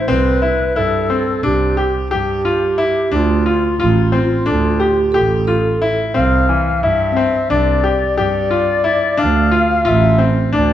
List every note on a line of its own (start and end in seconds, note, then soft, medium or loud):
0.00 0.38 D4 medium
0.00 0.37 F4 medium
0.00 0.09 C5 medium
0.07 0.60 C2 medium
0.07 0.37 C4 medium
0.07 0.79 B4 loud
0.42 0.71 E4 medium
0.75 1.27 G2 medium
0.75 1.05 E4 medium
0.75 1.44 A4 loud
1.10 1.39 C4 medium
1.42 1.94 C2 medium
1.42 1.73 D4 medium
1.42 2.08 G4 medium
1.77 2.07 G4 medium
2.10 2.88 G2 medium
2.10 2.40 G4 medium
2.14 3.17 G4 medium
2.45 2.74 F4 medium
2.78 3.08 E4 medium
3.11 3.64 D2 medium
3.11 3.41 D4 medium
3.16 3.81 F4 medium
3.46 3.75 F4 medium
3.79 4.31 A1 loud
3.79 4.09 F4 medium
3.79 5.79 F4 medium
4.12 4.42 C4 medium
4.25 6.24 F4 medium
4.46 4.99 D2 medium
4.46 4.76 D4 medium
4.46 4.77 A4 medium
4.80 5.10 G4 medium
4.80 5.15 G4 medium
5.12 5.92 A1 medium
5.12 5.44 G4 medium
5.12 5.44 A4 medium
5.47 5.77 F4 medium
5.47 5.94 A4 medium
5.82 6.11 E4 medium
6.14 6.67 C2 loud
6.14 6.44 C4 medium
6.14 6.79 F5 loud
6.49 6.79 E3 medium
6.81 7.34 G2 loud
6.81 7.12 E4 medium
6.81 7.46 E5 loud
7.12 9.12 C4 medium
7.16 7.46 C4 medium
7.49 8.01 C2 medium
7.49 7.80 D4 medium
7.49 8.13 D5 medium
7.84 8.13 G4 medium
8.16 8.95 G2 medium
8.16 8.47 G4 medium
8.16 9.20 D5 medium
8.51 8.80 F4 medium
8.84 9.14 E4 medium
9.17 9.70 D2 loud
9.17 9.47 D4 medium
9.17 9.88 F5 loud
9.51 9.81 F4 medium
9.85 10.37 A1 loud
9.85 10.15 F4 medium
9.85 10.26 E5 loud
10.18 10.48 C4 medium
10.52 10.73 D2 medium
10.52 10.73 D4 medium
10.52 10.73 D5 medium